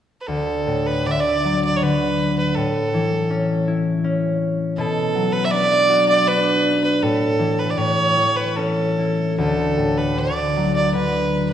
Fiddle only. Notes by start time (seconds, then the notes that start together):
0.21 B4
0.26 A4
0.87 B4
1.06 D5
1.11 E5
1.20 D5
1.65 D5
1.76 C#5
1.82 B4
2.39 B4
2.55 A4
4.77 A4
5.32 B4
5.45 E5
5.51 D5
6.09 D5
6.28 B4
6.84 B4
7.02 A4
7.59 B4
7.70 D5
7.77 C#5
8.36 B4
8.56 A4
9.38 A4
9.98 B4
10.19 D5
10.76 D5
10.94 B4